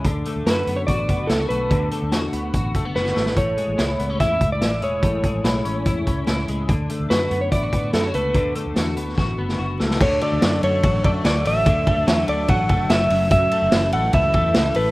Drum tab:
CC |----------------|----------------|----------------|----------------|
RD |----------------|----------------|----------------|----------------|
HH |x-x-x-x-x-x-x-x-|x-x-x-x-x-x-----|x-x-x-x-x-x-x-x-|x-x-x-x-x-x-x-x-|
SD |----o-------o---|----o-------oooo|----o---o---o---|----o-------o---|
BD |o-------o-o-----|o-------o-o-----|o-------o-o-----|o-o-----o-o-----|

CC |----------------|----------------|x---------------|----------------|
RD |----------------|----------------|--x-x-x-x-x-x-x-|x-x-x-x-x-x-x-x-|
HH |x-x-x-x-x-x-x-x-|x-x-x-x---------|--------------o-|p-------------o-|
SD |----o-------o---|----o---o--o--oo|----o-------o---|----o-------o---|
BD |o-------o-o-----|o-------o-------|o-------o-o-----|o-o-----o-o-----|

CC |----------------|
RD |x-x-x-x-x-x-x-x-|
HH |p-------------o-|
SD |----o-------o---|
BD |o-------o-o-----|